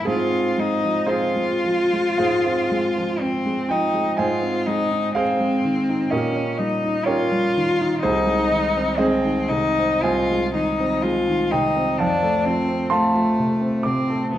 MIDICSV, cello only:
0, 0, Header, 1, 2, 480
1, 0, Start_track
1, 0, Tempo, 1010101
1, 30, Time_signature, 4, 2, 24, 8
1, 511, Tempo, 1100917
1, 991, Tempo, 995025
1, 1951, Tempo, 958466
1, 4351, Tempo, 1069519
1, 4831, Tempo, 1005025
1, 5311, Tempo, 936037
1, 7029, End_track
2, 0, Start_track
2, 0, Title_t, "Cello"
2, 0, Program_c, 0, 42
2, 38, Note_on_c, 0, 65, 65
2, 283, Note_on_c, 0, 63, 69
2, 290, Note_off_c, 0, 65, 0
2, 517, Note_on_c, 0, 65, 77
2, 524, Note_off_c, 0, 63, 0
2, 1488, Note_on_c, 0, 60, 69
2, 1495, Note_off_c, 0, 65, 0
2, 1727, Note_on_c, 0, 63, 64
2, 1734, Note_off_c, 0, 60, 0
2, 1959, Note_on_c, 0, 65, 58
2, 1967, Note_off_c, 0, 63, 0
2, 2199, Note_on_c, 0, 63, 71
2, 2207, Note_off_c, 0, 65, 0
2, 2439, Note_off_c, 0, 63, 0
2, 2443, Note_on_c, 0, 60, 69
2, 2918, Note_on_c, 0, 61, 65
2, 2925, Note_off_c, 0, 60, 0
2, 3159, Note_on_c, 0, 63, 63
2, 3166, Note_off_c, 0, 61, 0
2, 3396, Note_on_c, 0, 65, 80
2, 3404, Note_off_c, 0, 63, 0
2, 3865, Note_on_c, 0, 63, 74
2, 3872, Note_off_c, 0, 65, 0
2, 4356, Note_on_c, 0, 60, 63
2, 4363, Note_off_c, 0, 63, 0
2, 4586, Note_on_c, 0, 63, 70
2, 4593, Note_off_c, 0, 60, 0
2, 4829, Note_on_c, 0, 65, 75
2, 4836, Note_off_c, 0, 63, 0
2, 5071, Note_off_c, 0, 65, 0
2, 5074, Note_on_c, 0, 63, 64
2, 5306, Note_on_c, 0, 65, 68
2, 5313, Note_off_c, 0, 63, 0
2, 5555, Note_on_c, 0, 63, 66
2, 5563, Note_off_c, 0, 65, 0
2, 5799, Note_on_c, 0, 62, 68
2, 5807, Note_off_c, 0, 63, 0
2, 6036, Note_on_c, 0, 60, 71
2, 6044, Note_off_c, 0, 62, 0
2, 6273, Note_on_c, 0, 57, 63
2, 6281, Note_off_c, 0, 60, 0
2, 6758, Note_on_c, 0, 60, 62
2, 6766, Note_off_c, 0, 57, 0
2, 6990, Note_off_c, 0, 60, 0
2, 6993, Note_on_c, 0, 59, 57
2, 7029, Note_off_c, 0, 59, 0
2, 7029, End_track
0, 0, End_of_file